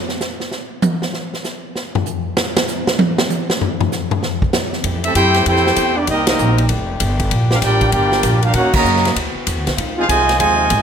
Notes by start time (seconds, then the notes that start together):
0.09 snare
0.21 snare, hi-hat pedal
0.40 snare
0.52 snare
0.82 hi-hat pedal, high tom
1.02 snare
1.13 snare
1.34 snare
1.44 snare, hi-hat pedal
1.76 snare
1.95 floor tom
2.06 hi-hat pedal
2.37 snare
2.57 snare
2.68 snare, hi-hat pedal
2.87 snare
2.99 high tom
3.18 snare
3.30 hi-hat pedal, high tom
3.50 snare
3.61 floor tom
3.81 floor tom
3.92 snare, hi-hat pedal
4.11 floor tom
4.23 snare
4.42 kick
4.53 snare, hi-hat pedal
4.73 snare
4.83 F2 E3 A3 E4 G4, kick, ride
5.04 A3 C4 E4 G4 A4 E5, ride
5.15 F#2 C4 E4 G4 A4 C5 G5, kick, hi-hat pedal, ride
5.34 snare, ride
5.46 F2 C4 E4 G4 A4 C5 G5, kick, ride
5.56 snare
5.67 snare
5.76 E2, kick, hi-hat pedal, ride
5.97 A#3 D4 E4 G4 D5
6.07 C2 D#3 G3 A#3 C4 D#4 G4 A#4 D#5, kick, ride
6.27 G3 A#3 C4 D#4 G4 A#4 D#5, snare, ride
6.39 A#1, hi-hat pedal
6.58 ride
6.69 F1 A3 D4 G4, kick, ride
7.00 G1, kick, hi-hat pedal, ride
7.20 kick, ride
7.31 A#1 F3 A#3, kick, ride
7.51 G3 D4 F4 G4 A#4 F5, snare
7.62 A1 G3 D4 F4 G4 A#4 D5 G5, kick, snare, hi-hat pedal, ride
7.81 kick, ride
7.92 G1 G3 D4 F4 G4 A#4 D5 G5, kick, ride
8.12 snare
8.23 A#1, kick, hi-hat pedal, ride
8.43 G3 D4 F4 G4 A#4 F5, ride
8.54 D#2 D#3 A#3 C#4 D#4 F#4 A#4 C#5 F#5, kick, ride
8.74 C#3 F#3 A#3 F#4 C#5 D#5 A#5, kick, crash
8.84 F#2, hi-hat pedal
8.96 snare
9.05 snare, ride
9.13 D2 E3 B3 C4 F#4, kick, ride
9.35 muted upright bass stroke
9.47 E2, kick, hi-hat pedal, ride
9.56 D2
9.67 C2, snare, ride
9.77 C#2 D#3 D#4 F4, kick, ride
9.98 G#3 C4 D#4 F4 G#4 C5 F5
10.08 C2 C3 F3 G#3 F4 C5 D#5 G#5, kick, hi-hat pedal, ride
10.29 snare, ride
10.38 D#2 C3 F3 G#3 F4 C5 D#5 G#5, kick, ride
10.70 G#1, kick, hi-hat pedal, ride